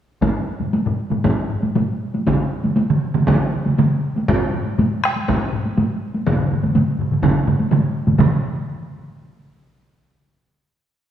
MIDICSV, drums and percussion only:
0, 0, Header, 1, 2, 480
1, 0, Start_track
1, 0, Tempo, 509771
1, 211, Time_signature, 4, 2, 24, 8
1, 3090, Tempo, 497100
1, 5970, Tempo, 480769
1, 8370, Tempo, 464756
1, 10888, End_track
2, 0, Start_track
2, 0, Title_t, "Taiko and cinematic ensemble drums"
2, 203, Note_on_c, 9, 45, 80
2, 208, Note_on_c, 9, 48, 59
2, 209, Note_on_c, 9, 41, 84
2, 298, Note_off_c, 9, 45, 0
2, 303, Note_off_c, 9, 41, 0
2, 303, Note_off_c, 9, 48, 0
2, 566, Note_on_c, 9, 45, 61
2, 568, Note_on_c, 9, 48, 44
2, 660, Note_off_c, 9, 45, 0
2, 662, Note_off_c, 9, 48, 0
2, 689, Note_on_c, 9, 48, 59
2, 784, Note_off_c, 9, 48, 0
2, 810, Note_on_c, 9, 45, 86
2, 904, Note_off_c, 9, 45, 0
2, 1048, Note_on_c, 9, 45, 86
2, 1052, Note_on_c, 9, 48, 51
2, 1142, Note_off_c, 9, 45, 0
2, 1146, Note_off_c, 9, 48, 0
2, 1169, Note_on_c, 9, 45, 81
2, 1169, Note_on_c, 9, 48, 65
2, 1174, Note_on_c, 9, 41, 84
2, 1263, Note_off_c, 9, 48, 0
2, 1264, Note_off_c, 9, 45, 0
2, 1269, Note_off_c, 9, 41, 0
2, 1413, Note_on_c, 9, 45, 56
2, 1508, Note_off_c, 9, 45, 0
2, 1530, Note_on_c, 9, 48, 46
2, 1536, Note_on_c, 9, 45, 62
2, 1624, Note_off_c, 9, 48, 0
2, 1630, Note_off_c, 9, 45, 0
2, 1652, Note_on_c, 9, 48, 64
2, 1656, Note_on_c, 9, 45, 86
2, 1746, Note_off_c, 9, 48, 0
2, 1750, Note_off_c, 9, 45, 0
2, 2016, Note_on_c, 9, 48, 49
2, 2110, Note_off_c, 9, 48, 0
2, 2133, Note_on_c, 9, 48, 64
2, 2137, Note_on_c, 9, 47, 86
2, 2140, Note_on_c, 9, 41, 84
2, 2228, Note_off_c, 9, 48, 0
2, 2231, Note_off_c, 9, 47, 0
2, 2234, Note_off_c, 9, 41, 0
2, 2489, Note_on_c, 9, 48, 50
2, 2491, Note_on_c, 9, 47, 64
2, 2583, Note_off_c, 9, 48, 0
2, 2585, Note_off_c, 9, 47, 0
2, 2606, Note_on_c, 9, 48, 66
2, 2700, Note_off_c, 9, 48, 0
2, 2730, Note_on_c, 9, 47, 84
2, 2825, Note_off_c, 9, 47, 0
2, 2969, Note_on_c, 9, 48, 50
2, 2970, Note_on_c, 9, 47, 88
2, 3063, Note_off_c, 9, 48, 0
2, 3064, Note_off_c, 9, 47, 0
2, 3090, Note_on_c, 9, 47, 87
2, 3090, Note_on_c, 9, 48, 64
2, 3091, Note_on_c, 9, 41, 96
2, 3187, Note_off_c, 9, 47, 0
2, 3187, Note_off_c, 9, 48, 0
2, 3188, Note_off_c, 9, 41, 0
2, 3335, Note_on_c, 9, 47, 57
2, 3431, Note_off_c, 9, 47, 0
2, 3451, Note_on_c, 9, 48, 48
2, 3465, Note_on_c, 9, 47, 60
2, 3548, Note_off_c, 9, 48, 0
2, 3561, Note_off_c, 9, 47, 0
2, 3575, Note_on_c, 9, 48, 65
2, 3580, Note_on_c, 9, 47, 85
2, 3672, Note_off_c, 9, 48, 0
2, 3677, Note_off_c, 9, 47, 0
2, 3940, Note_on_c, 9, 48, 48
2, 4037, Note_off_c, 9, 48, 0
2, 4059, Note_on_c, 9, 41, 110
2, 4061, Note_on_c, 9, 45, 85
2, 4064, Note_on_c, 9, 48, 61
2, 4155, Note_off_c, 9, 41, 0
2, 4157, Note_off_c, 9, 45, 0
2, 4161, Note_off_c, 9, 48, 0
2, 4303, Note_on_c, 9, 45, 86
2, 4399, Note_off_c, 9, 45, 0
2, 4421, Note_on_c, 9, 48, 44
2, 4517, Note_off_c, 9, 48, 0
2, 4541, Note_on_c, 9, 45, 82
2, 4545, Note_on_c, 9, 48, 62
2, 4637, Note_off_c, 9, 45, 0
2, 4641, Note_off_c, 9, 48, 0
2, 4784, Note_on_c, 9, 37, 62
2, 4881, Note_off_c, 9, 37, 0
2, 4903, Note_on_c, 9, 48, 45
2, 5000, Note_off_c, 9, 48, 0
2, 5023, Note_on_c, 9, 41, 95
2, 5025, Note_on_c, 9, 45, 81
2, 5026, Note_on_c, 9, 48, 62
2, 5120, Note_off_c, 9, 41, 0
2, 5121, Note_off_c, 9, 45, 0
2, 5122, Note_off_c, 9, 48, 0
2, 5260, Note_on_c, 9, 45, 78
2, 5357, Note_off_c, 9, 45, 0
2, 5382, Note_on_c, 9, 48, 44
2, 5478, Note_off_c, 9, 48, 0
2, 5498, Note_on_c, 9, 45, 86
2, 5498, Note_on_c, 9, 48, 60
2, 5595, Note_off_c, 9, 45, 0
2, 5595, Note_off_c, 9, 48, 0
2, 5853, Note_on_c, 9, 48, 45
2, 5950, Note_off_c, 9, 48, 0
2, 5968, Note_on_c, 9, 45, 63
2, 5971, Note_on_c, 9, 41, 91
2, 5972, Note_on_c, 9, 47, 62
2, 5975, Note_on_c, 9, 48, 55
2, 6067, Note_off_c, 9, 45, 0
2, 6071, Note_off_c, 9, 41, 0
2, 6071, Note_off_c, 9, 47, 0
2, 6074, Note_off_c, 9, 48, 0
2, 6091, Note_on_c, 9, 45, 64
2, 6091, Note_on_c, 9, 47, 61
2, 6191, Note_off_c, 9, 45, 0
2, 6191, Note_off_c, 9, 47, 0
2, 6212, Note_on_c, 9, 45, 61
2, 6218, Note_on_c, 9, 47, 64
2, 6312, Note_off_c, 9, 45, 0
2, 6318, Note_off_c, 9, 47, 0
2, 6336, Note_on_c, 9, 45, 62
2, 6338, Note_on_c, 9, 48, 46
2, 6339, Note_on_c, 9, 47, 61
2, 6436, Note_off_c, 9, 45, 0
2, 6438, Note_off_c, 9, 48, 0
2, 6439, Note_off_c, 9, 47, 0
2, 6450, Note_on_c, 9, 45, 58
2, 6456, Note_on_c, 9, 47, 65
2, 6456, Note_on_c, 9, 48, 60
2, 6550, Note_off_c, 9, 45, 0
2, 6555, Note_off_c, 9, 48, 0
2, 6556, Note_off_c, 9, 47, 0
2, 6691, Note_on_c, 9, 45, 57
2, 6707, Note_on_c, 9, 47, 58
2, 6791, Note_off_c, 9, 45, 0
2, 6807, Note_off_c, 9, 47, 0
2, 6816, Note_on_c, 9, 45, 60
2, 6827, Note_on_c, 9, 47, 59
2, 6916, Note_off_c, 9, 45, 0
2, 6926, Note_off_c, 9, 47, 0
2, 6934, Note_on_c, 9, 41, 88
2, 6935, Note_on_c, 9, 45, 81
2, 6937, Note_on_c, 9, 48, 62
2, 6943, Note_on_c, 9, 47, 85
2, 7034, Note_off_c, 9, 41, 0
2, 7035, Note_off_c, 9, 45, 0
2, 7036, Note_off_c, 9, 48, 0
2, 7043, Note_off_c, 9, 47, 0
2, 7175, Note_on_c, 9, 45, 79
2, 7180, Note_on_c, 9, 47, 77
2, 7181, Note_on_c, 9, 48, 43
2, 7275, Note_off_c, 9, 45, 0
2, 7280, Note_off_c, 9, 47, 0
2, 7281, Note_off_c, 9, 48, 0
2, 7297, Note_on_c, 9, 48, 45
2, 7396, Note_off_c, 9, 48, 0
2, 7417, Note_on_c, 9, 45, 88
2, 7417, Note_on_c, 9, 48, 61
2, 7422, Note_on_c, 9, 47, 87
2, 7516, Note_off_c, 9, 45, 0
2, 7517, Note_off_c, 9, 48, 0
2, 7522, Note_off_c, 9, 47, 0
2, 7773, Note_on_c, 9, 48, 47
2, 7775, Note_on_c, 9, 45, 63
2, 7779, Note_on_c, 9, 47, 56
2, 7873, Note_off_c, 9, 48, 0
2, 7875, Note_off_c, 9, 45, 0
2, 7879, Note_off_c, 9, 47, 0
2, 7888, Note_on_c, 9, 41, 67
2, 7889, Note_on_c, 9, 45, 93
2, 7892, Note_on_c, 9, 48, 59
2, 7894, Note_on_c, 9, 47, 93
2, 7988, Note_off_c, 9, 41, 0
2, 7989, Note_off_c, 9, 45, 0
2, 7992, Note_off_c, 9, 48, 0
2, 7994, Note_off_c, 9, 47, 0
2, 10888, End_track
0, 0, End_of_file